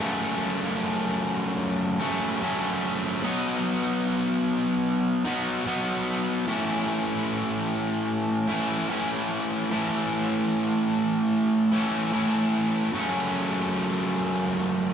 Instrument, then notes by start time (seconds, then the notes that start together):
distorted electric guitar
Already playing: F#2
0.00 C#3 F#3 A3 C#4
2.00 F#2 C#3 F#3 A3 C#4
2.41 F#2 C#3 F#3 A3 C#4
3.22 B2 F#3 B3 D#4
5.25 B2 F#3 B3 D#4
5.65 B2 F#3 B3 D#4
6.47 A2 E3 A3 C#4 E4
8.48 A2 E3 A3 C#4 E4
8.89 A2 E3 A3 C#4 E4
9.70 A2 E3 A3 C#4 E4
11.72 A2 E3 A3 C#4 E4
12.11 A2 E3 A3 C#4 E4
12.93 F#2 C#3 F#3 A3 C#4